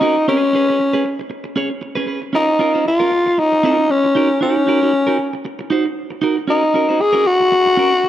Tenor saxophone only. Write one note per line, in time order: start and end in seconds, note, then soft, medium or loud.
0.00 0.28 D#4 medium
0.29 1.27 C#4 medium
2.35 2.83 D#4 loud
2.87 3.41 F4 medium
3.39 3.92 D#4 loud
3.91 4.42 C#4 medium
4.42 5.41 C#4 medium
6.50 7.03 D#4 medium
7.01 7.28 G#4 loud
7.27 8.09 F#4 loud